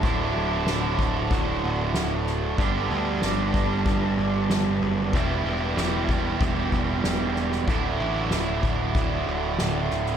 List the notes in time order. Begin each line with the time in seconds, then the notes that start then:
Already playing: F#4 D5 A5
0.02 D1 D2 A2 D3 A3 E4 F#5, kick, crash
0.36 D1
0.67 D1, snare, crash
0.99 kick
1.31 D1, kick, crash
1.63 D1
1.94 D1, snare, crash
2.27 snare
2.58 G1 G2 D3 G3 B3 D4 G4 B4 A5, kick, crash
2.91 D2
3.22 G1, snare, crash
3.54 G1, kick
3.86 G1, kick, crash
4.18 G1
4.50 G1, snare, crash
4.82 F#1
5.13 E1 E2 B2 E3 G3 B3 E4 G5, kick, crash
5.45 E1
5.77 E1, snare, crash
6.09 kick
6.41 E1, kick, crash
6.72 E1, kick
7.04 E1, snare, crash
7.36 snare
7.52 snare
7.67 D1 D2 A2 D3 A3 E4 A4 F#5, kick, crash
7.99 A1
8.31 D1, snare, crash
8.63 D1, kick
8.95 D1, kick, crash
9.27 D1
9.59 D1, snare, crash
9.90 D1, snare
10.06 snare